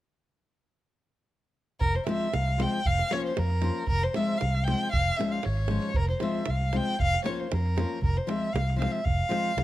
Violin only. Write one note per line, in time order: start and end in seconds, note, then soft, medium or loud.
1.80 1.97 A#4 loud
1.96 2.06 C5 medium
2.07 2.35 E5 medium
2.34 2.64 F5 medium
2.62 2.88 G5 medium
2.87 3.14 F5 loud
3.12 3.25 C#5 loud
3.26 3.40 C5 medium
3.38 3.88 A#4 medium
3.89 4.05 A#4 loud
4.03 4.17 C5 medium
4.16 4.39 E5 medium
4.38 4.65 F5 medium
4.64 4.91 G5 medium
4.92 5.18 F5 loud
5.16 5.33 E5 medium
5.31 5.47 F5 medium
5.45 5.97 C#5 medium
5.96 6.09 A#4 loud
6.10 6.23 C5 medium
6.22 6.51 E5 medium
6.50 6.78 F5 medium
6.76 7.01 G5 medium
7.02 7.25 F5 loud
7.25 7.41 C#5 medium
7.40 7.55 C5 medium
7.53 8.03 A#4 medium
8.04 8.19 A#4 medium
8.17 8.31 C5 medium
8.29 8.54 E5 medium
8.53 8.78 F5 medium
8.79 8.93 F5 medium
8.91 9.06 E5 medium
9.05 9.64 F5 loud